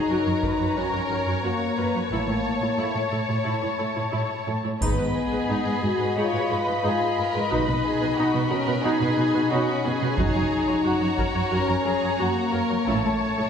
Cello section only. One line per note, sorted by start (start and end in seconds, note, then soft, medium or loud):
0.11 0.17 F#2 soft
0.27 0.33 F#2 soft
0.44 0.50 F#2 soft
0.60 0.67 F#2 soft
0.77 0.83 F#2 soft
0.94 1.00 F#2 soft
1.11 1.17 F#2 soft
1.27 1.34 F#2 soft
1.44 1.51 F#2 soft
1.78 1.85 F#2 soft
1.94 2.01 F#2 soft
2.11 2.18 A2 soft
2.28 2.34 A2 soft
2.62 2.68 A2 soft
2.79 2.85 A2 soft
2.95 3.02 A2 soft
3.12 3.19 A2 soft
3.29 3.36 A2 soft
3.46 3.53 A2 soft
3.63 3.70 A2 soft
3.80 3.87 A2 soft
3.98 4.04 A2 soft
4.14 4.21 A2 soft
4.48 4.55 A2 soft
4.64 4.71 A2 soft
4.82 4.89 G#2 soft
4.99 5.06 G#2 soft
5.33 5.39 G#2 soft
5.50 5.57 G#2 soft
5.66 5.73 G#2 soft
5.83 5.90 G#2 soft
6.01 6.07 G#2 soft
6.17 6.24 G#2 soft
6.35 6.41 G#2 soft
6.52 6.58 G#2 soft
6.69 6.75 G#2 soft
6.85 6.92 G#2 soft
7.19 7.25 G#2 soft
7.35 7.42 G#2 soft
7.52 7.58 B2 soft
7.69 7.75 B2 soft
8.02 8.09 B2 soft
8.19 8.25 B2 medium
8.35 8.41 B2 soft
8.52 8.58 B2 soft
8.68 8.75 B2 soft
8.85 8.91 B2 medium
9.01 9.08 B2 soft
9.18 9.25 B2 soft
9.36 9.42 B2 soft
9.52 9.58 B2 medium
9.85 9.92 B2 soft
10.02 10.08 B2 soft
10.18 10.25 F#2 medium
10.35 10.42 F#2 soft
10.69 10.75 F#2 soft
10.85 10.91 F#2 medium
11.02 11.08 F#2 soft
11.18 11.25 F#2 soft
11.35 11.42 F#2 soft
11.52 11.58 F#2 soft
11.69 11.75 F#2 soft
11.86 11.92 F#2 soft
12.02 12.09 F#2 soft
12.20 12.26 F#2 soft
12.54 12.60 F#2 soft
12.71 12.78 F#2 soft
12.88 12.95 A2 soft
13.05 13.12 A2 soft
13.40 13.46 A2 soft